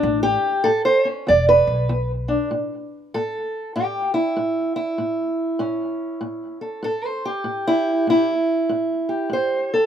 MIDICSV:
0, 0, Header, 1, 3, 480
1, 0, Start_track
1, 0, Tempo, 616650
1, 41, Time_signature, 4, 2, 24, 8
1, 7675, End_track
2, 0, Start_track
2, 0, Title_t, "Steel-string acoustic guitar"
2, 0, Program_c, 0, 25
2, 0, Note_on_c, 0, 62, 103
2, 26, Note_on_c, 0, 45, 75
2, 174, Note_off_c, 0, 62, 0
2, 177, Note_on_c, 0, 67, 112
2, 478, Note_off_c, 0, 45, 0
2, 496, Note_on_c, 0, 69, 97
2, 509, Note_off_c, 0, 67, 0
2, 509, Note_on_c, 0, 45, 82
2, 659, Note_off_c, 0, 69, 0
2, 662, Note_on_c, 0, 72, 92
2, 818, Note_on_c, 0, 61, 45
2, 832, Note_off_c, 0, 72, 0
2, 960, Note_off_c, 0, 45, 0
2, 977, Note_off_c, 0, 61, 0
2, 986, Note_on_c, 0, 40, 78
2, 1000, Note_on_c, 0, 74, 88
2, 1154, Note_off_c, 0, 74, 0
2, 1157, Note_on_c, 0, 71, 102
2, 1439, Note_off_c, 0, 40, 0
2, 1473, Note_on_c, 0, 40, 86
2, 1639, Note_off_c, 0, 71, 0
2, 1777, Note_on_c, 0, 62, 52
2, 1922, Note_off_c, 0, 40, 0
2, 1937, Note_off_c, 0, 62, 0
2, 1952, Note_on_c, 0, 45, 72
2, 2402, Note_off_c, 0, 45, 0
2, 2447, Note_on_c, 0, 69, 91
2, 2450, Note_on_c, 0, 45, 78
2, 2891, Note_off_c, 0, 45, 0
2, 2920, Note_off_c, 0, 69, 0
2, 2923, Note_on_c, 0, 67, 79
2, 2929, Note_on_c, 0, 45, 76
2, 3219, Note_off_c, 0, 67, 0
2, 3222, Note_on_c, 0, 64, 82
2, 3371, Note_off_c, 0, 45, 0
2, 3398, Note_on_c, 0, 45, 72
2, 3695, Note_off_c, 0, 64, 0
2, 3704, Note_on_c, 0, 64, 79
2, 3846, Note_off_c, 0, 45, 0
2, 3877, Note_on_c, 0, 45, 73
2, 4325, Note_off_c, 0, 45, 0
2, 4352, Note_on_c, 0, 45, 79
2, 4356, Note_on_c, 0, 61, 50
2, 4803, Note_off_c, 0, 45, 0
2, 4831, Note_on_c, 0, 45, 74
2, 5143, Note_off_c, 0, 64, 0
2, 5146, Note_on_c, 0, 69, 50
2, 5283, Note_off_c, 0, 45, 0
2, 5313, Note_on_c, 0, 45, 74
2, 5323, Note_off_c, 0, 69, 0
2, 5326, Note_on_c, 0, 69, 84
2, 5489, Note_off_c, 0, 69, 0
2, 5489, Note_on_c, 0, 72, 84
2, 5647, Note_off_c, 0, 72, 0
2, 5647, Note_on_c, 0, 67, 84
2, 5764, Note_off_c, 0, 45, 0
2, 5792, Note_on_c, 0, 45, 71
2, 5974, Note_on_c, 0, 64, 108
2, 6243, Note_off_c, 0, 45, 0
2, 6282, Note_on_c, 0, 45, 69
2, 6289, Note_off_c, 0, 64, 0
2, 6304, Note_on_c, 0, 64, 97
2, 6446, Note_off_c, 0, 67, 0
2, 6728, Note_off_c, 0, 45, 0
2, 6767, Note_on_c, 0, 45, 78
2, 7075, Note_on_c, 0, 67, 47
2, 7098, Note_off_c, 0, 61, 0
2, 7210, Note_off_c, 0, 45, 0
2, 7235, Note_on_c, 0, 45, 75
2, 7254, Note_off_c, 0, 64, 0
2, 7264, Note_on_c, 0, 72, 85
2, 7568, Note_off_c, 0, 67, 0
2, 7574, Note_off_c, 0, 72, 0
2, 7578, Note_on_c, 0, 69, 76
2, 7675, Note_off_c, 0, 45, 0
2, 7675, Note_off_c, 0, 69, 0
2, 7675, End_track
3, 0, Start_track
3, 0, Title_t, "Upright bass"
3, 0, Program_c, 1, 32
3, 25, Note_on_c, 1, 33, 98
3, 268, Note_off_c, 1, 33, 0
3, 1006, Note_on_c, 1, 28, 98
3, 1241, Note_off_c, 1, 28, 0
3, 1302, Note_on_c, 1, 35, 90
3, 1818, Note_off_c, 1, 35, 0
3, 7675, End_track
0, 0, End_of_file